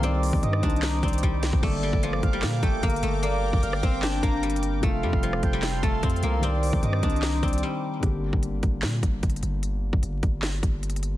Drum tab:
CC |------------------------------------------------------------------------------------------------|x-----------------------------------------------------------------------------------------------|------------------------------------------------------------------------------------------------|------------------------------------------------------------------------------------------------|
HH |x-----------o-----------x-----------x---x---x---x-----------x--x--x--x--x-----------x-----------|------------------------x-----------x-----------x-----------x-----------x---x---x---x-----------|x-----------------------x-----------x-----------x-----------x-----------x---x---x---x-----------|x-----------------------x-----------x-----------x-----------x-----------x---x---x---x-----------|
CP |------------------------------------------------x-----------------------------------------------|------------------------------------------------x-----------------------------------------------|------------------------------------------------x-----------------------------------------------|------------------------------------------------x-----------------------------------------------|
SD |------------------------------r-----------------o-----------------------------------o-----------|------------------------------r-----------------o-----------------------------------------------|------------------------------r-----------------o-----------------------------------------------|------------------------------r-----------------o-----------------------------------------------|
BD |------------------o-----------------o-----------------------o-----------o-----------------o-----|o-----------------o-----------------o-----------------------o-----------o-----------------------|------------------o-----------------o-----------------------o-----------------------------------|o-----------------o-----------------o-----------------------o-----------o-----------------------|

CC |------------------------------------------------------------------------------------------------|------------------------------------------------------------------------------------------------|------------------------------------------------------------------------------------------------|
HH |x-----------o-----------x-----------x---x---x---x-----------x--x--x--x--------------------------|x-----------------------x-----------x-----------x-----------x-----------x---x---x---x-----------|x-----------------------x-----------x-----------x-----------x-----------x---x---x---x-----------|
CP |------------------------------------------------x-----------------------------------------------|------------------------------------------------x-----------------------------------------------|------------------------------------------------x-----------------------------------------------|
SD |------------------------------r-----------------o-----------------------------------------------|------------------------------------------------o-----------------------------------------------|------------------------------------------------o-----------------------------------------------|
BD |------------------o-----------------o-----------------------o-----------------------------------|o-----------------o-----------------o-----------------------o-----------o-----------------------|------------------o-----------------o-----------------------o-----------------------------------|